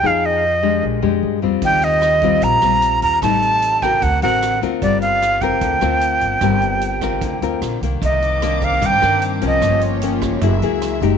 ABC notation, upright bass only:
X:1
M:4/4
L:1/8
Q:1/4=150
K:Gm
V:1 name="Upright bass" clef=bass
F,,4 B,,, F,, G,, F,, | E,,4 B,,, B,,,2 E,, | A,,,4 D,, A,,,2 D,, | G,,,4 D,, D,,2 G,,, |
G,,,4 D,, D,, B,,, C,, | [K:Gphr] C,,4 G,, G,,2 C,, | G,,,4 ^F,,, ^C,,2 F,,, |]